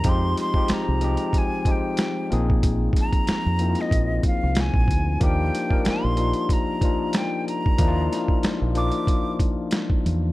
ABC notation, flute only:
X:1
M:4/4
L:1/16
Q:"Swing 16ths" 1/4=93
K:Eb
V:1 name="Flute"
c'2 c'2 b4 a2 g4 z2 | z2 b4- b e3 f2 a4 | g4 c'4 b4 g2 b2- | b4 z2 d'4 z6 |]